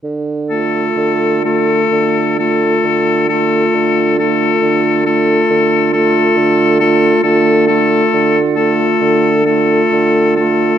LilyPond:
<<
  \new Staff \with { instrumentName = "Oboe" } { \time 4/4 \key d \minor \tempo 4 = 67 r8 a'4 a'4 a'4 a'8~ | a'8 a'4 a'4 a'4 a'8 | a'8 a'4 a'4 a'4 a'8 | }
  \new Staff \with { instrumentName = "Clarinet" } { \time 4/4 \key d \minor r8 f'4 f'4 f'4 f'8~ | f'8 f'4 f'4 f'4 f'8 | f'8 f'4 f'4 f'4 f'8 | }
  \new Staff \with { instrumentName = "French horn" } { \time 4/4 \key d \minor r8 a4 a4 a4 a8~ | a8 a4 a4 a4 a8 | a8 a4 a4 a4 a8 | }
  \new Staff \with { instrumentName = "Bassoon" } { \clef bass \time 4/4 \key d \minor d4 d4 d4 d4 | d4 d4 d4 d4 | d4 d4 d4 d4 | }
>>